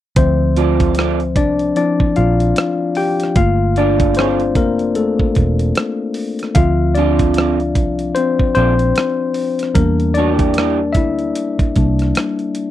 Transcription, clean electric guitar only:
0, 0, Header, 1, 2, 480
1, 0, Start_track
1, 0, Key_signature, -1, "minor"
1, 0, Tempo, 800000
1, 94, Time_signature, 4, 2, 24, 8
1, 7624, End_track
2, 0, Start_track
2, 0, Title_t, "Clean electric guitar"
2, 0, Program_c, 0, 27
2, 340, Note_on_c, 0, 60, 75
2, 342, Note_on_c, 0, 65, 74
2, 346, Note_on_c, 0, 69, 84
2, 351, Note_on_c, 0, 74, 86
2, 562, Note_off_c, 0, 60, 0
2, 563, Note_off_c, 0, 65, 0
2, 565, Note_off_c, 0, 69, 0
2, 567, Note_off_c, 0, 74, 0
2, 587, Note_on_c, 0, 60, 72
2, 587, Note_on_c, 0, 65, 80
2, 591, Note_on_c, 0, 69, 80
2, 597, Note_on_c, 0, 74, 86
2, 708, Note_off_c, 0, 60, 0
2, 708, Note_off_c, 0, 65, 0
2, 710, Note_off_c, 0, 69, 0
2, 713, Note_off_c, 0, 74, 0
2, 2262, Note_on_c, 0, 58, 78
2, 2266, Note_on_c, 0, 65, 81
2, 2270, Note_on_c, 0, 69, 83
2, 2274, Note_on_c, 0, 74, 81
2, 2483, Note_off_c, 0, 58, 0
2, 2485, Note_off_c, 0, 65, 0
2, 2487, Note_off_c, 0, 69, 0
2, 2489, Note_off_c, 0, 74, 0
2, 2508, Note_on_c, 0, 58, 68
2, 2512, Note_on_c, 0, 65, 75
2, 2515, Note_on_c, 0, 69, 79
2, 2516, Note_on_c, 0, 74, 75
2, 2646, Note_off_c, 0, 58, 0
2, 2648, Note_off_c, 0, 65, 0
2, 2649, Note_off_c, 0, 69, 0
2, 2650, Note_off_c, 0, 74, 0
2, 4183, Note_on_c, 0, 60, 81
2, 4183, Note_on_c, 0, 65, 93
2, 4190, Note_on_c, 0, 69, 82
2, 4192, Note_on_c, 0, 74, 83
2, 4403, Note_off_c, 0, 60, 0
2, 4403, Note_off_c, 0, 65, 0
2, 4407, Note_off_c, 0, 69, 0
2, 4408, Note_off_c, 0, 74, 0
2, 4418, Note_on_c, 0, 60, 79
2, 4421, Note_on_c, 0, 65, 76
2, 4423, Note_on_c, 0, 69, 69
2, 4427, Note_on_c, 0, 74, 75
2, 4544, Note_off_c, 0, 60, 0
2, 4545, Note_off_c, 0, 65, 0
2, 4546, Note_off_c, 0, 69, 0
2, 4548, Note_off_c, 0, 74, 0
2, 5138, Note_on_c, 0, 60, 59
2, 5140, Note_on_c, 0, 65, 65
2, 5147, Note_on_c, 0, 69, 62
2, 5150, Note_on_c, 0, 74, 70
2, 5236, Note_off_c, 0, 60, 0
2, 5237, Note_off_c, 0, 65, 0
2, 5240, Note_off_c, 0, 69, 0
2, 5242, Note_off_c, 0, 74, 0
2, 6105, Note_on_c, 0, 57, 80
2, 6110, Note_on_c, 0, 63, 83
2, 6112, Note_on_c, 0, 66, 87
2, 6115, Note_on_c, 0, 73, 95
2, 6195, Note_off_c, 0, 57, 0
2, 6195, Note_on_c, 0, 58, 80
2, 6200, Note_off_c, 0, 63, 0
2, 6200, Note_on_c, 0, 64, 83
2, 6202, Note_off_c, 0, 66, 0
2, 6202, Note_on_c, 0, 67, 87
2, 6205, Note_off_c, 0, 73, 0
2, 6205, Note_on_c, 0, 74, 95
2, 6324, Note_off_c, 0, 58, 0
2, 6327, Note_off_c, 0, 64, 0
2, 6328, Note_off_c, 0, 67, 0
2, 6329, Note_off_c, 0, 74, 0
2, 6343, Note_on_c, 0, 58, 77
2, 6351, Note_on_c, 0, 64, 75
2, 6353, Note_on_c, 0, 67, 82
2, 6357, Note_on_c, 0, 74, 86
2, 6466, Note_off_c, 0, 58, 0
2, 6470, Note_off_c, 0, 64, 0
2, 6471, Note_off_c, 0, 67, 0
2, 6473, Note_off_c, 0, 74, 0
2, 7624, End_track
0, 0, End_of_file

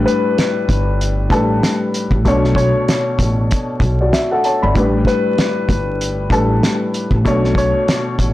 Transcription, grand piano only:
0, 0, Header, 1, 2, 480
1, 0, Start_track
1, 0, Tempo, 625000
1, 1732, Time_signature, 4, 2, 24, 8
1, 6400, End_track
2, 0, Start_track
2, 0, Title_t, "Grand piano"
2, 0, Program_c, 0, 0
2, 0, Control_c, 0, 64, 127
2, 0, Note_on_c, 0, 45, 91
2, 0, Note_on_c, 0, 55, 80
2, 0, Note_on_c, 0, 62, 83
2, 0, Note_on_c, 0, 71, 90
2, 513, Note_off_c, 0, 45, 0
2, 517, Note_off_c, 0, 55, 0
2, 521, Note_off_c, 0, 62, 0
2, 524, Note_off_c, 0, 71, 0
2, 992, Note_on_c, 0, 45, 69
2, 1000, Note_on_c, 0, 55, 67
2, 1007, Note_on_c, 0, 62, 63
2, 1015, Note_on_c, 0, 71, 83
2, 1538, Note_off_c, 0, 45, 0
2, 1542, Note_off_c, 0, 55, 0
2, 1545, Note_off_c, 0, 62, 0
2, 1549, Note_off_c, 0, 71, 0
2, 1727, Note_on_c, 0, 47, 97
2, 1735, Note_on_c, 0, 57, 80
2, 1741, Control_c, 0, 64, 0
2, 1742, Note_on_c, 0, 62, 80
2, 1749, Note_on_c, 0, 73, 97
2, 1875, Control_c, 0, 64, 127
2, 2436, Note_off_c, 0, 47, 0
2, 2439, Note_off_c, 0, 57, 0
2, 2443, Note_off_c, 0, 62, 0
2, 2447, Note_off_c, 0, 73, 0
2, 3078, Note_on_c, 0, 74, 63
2, 3083, Note_on_c, 0, 66, 55
2, 3169, Note_on_c, 0, 76, 67
2, 3170, Note_off_c, 0, 74, 0
2, 3172, Note_off_c, 0, 66, 0
2, 3304, Note_off_c, 0, 76, 0
2, 3312, Note_on_c, 0, 78, 77
2, 3317, Note_on_c, 0, 69, 69
2, 3407, Note_off_c, 0, 78, 0
2, 3409, Note_off_c, 0, 69, 0
2, 3414, Note_on_c, 0, 81, 68
2, 3419, Note_on_c, 0, 73, 59
2, 3547, Note_off_c, 0, 81, 0
2, 3549, Note_off_c, 0, 73, 0
2, 3552, Note_on_c, 0, 83, 67
2, 3556, Note_on_c, 0, 74, 52
2, 3642, Note_on_c, 0, 45, 90
2, 3649, Note_on_c, 0, 55, 82
2, 3656, Note_on_c, 0, 62, 81
2, 3663, Control_c, 0, 64, 0
2, 3664, Note_on_c, 0, 71, 92
2, 3780, Note_off_c, 0, 83, 0
2, 3783, Note_off_c, 0, 74, 0
2, 3802, Control_c, 0, 64, 127
2, 4353, Note_off_c, 0, 45, 0
2, 4357, Note_off_c, 0, 55, 0
2, 4360, Note_off_c, 0, 62, 0
2, 4364, Note_off_c, 0, 71, 0
2, 4833, Note_on_c, 0, 45, 70
2, 4841, Note_on_c, 0, 55, 66
2, 4848, Note_on_c, 0, 62, 62
2, 4856, Note_on_c, 0, 71, 80
2, 5378, Note_off_c, 0, 45, 0
2, 5382, Note_off_c, 0, 55, 0
2, 5385, Note_off_c, 0, 62, 0
2, 5389, Note_off_c, 0, 71, 0
2, 5567, Note_on_c, 0, 47, 99
2, 5574, Note_on_c, 0, 57, 81
2, 5581, Note_on_c, 0, 62, 83
2, 5583, Control_c, 0, 64, 0
2, 5589, Note_on_c, 0, 73, 99
2, 5737, Control_c, 0, 64, 127
2, 6275, Note_off_c, 0, 47, 0
2, 6279, Note_off_c, 0, 57, 0
2, 6283, Note_off_c, 0, 62, 0
2, 6286, Note_off_c, 0, 73, 0
2, 6400, End_track
0, 0, End_of_file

